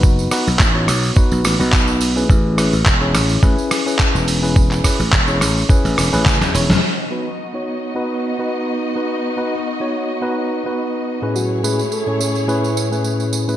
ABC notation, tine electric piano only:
X:1
M:4/4
L:1/16
Q:"Swing 16ths" 1/4=106
K:Bmix
V:1 name="Tine electric piano"
[B,DFB]2 [B,DFB] z2 [B,DFc]3 [B,DFB]3 [B,DFB]4 [CEGB]- | [CEGB]2 [CEGB] z2 [CEGc]3 [CEGB]3 [CEGB]4 [CEGB]- | [CEGB]2 [CEGB] z2 [CEGc]3 [CEGB]3 [CEGB]2 z [CEGc] z | z2 [B,DFB] z2 [B,DFc]3 [B,DFB]3 [B,DFB]4 [B,DFB]- |
[B,DFB]2 [B,DFB] z2 [B,DFc]3 [B,DFB]3 [B,DFB]4 [A,,CEGB]- | [A,,CEGB]2 [A,,CEGB] z2 [A,,CEGc]3 [A,,CEGB]3 [A,,CEGB]4 [A,,CEGB] |]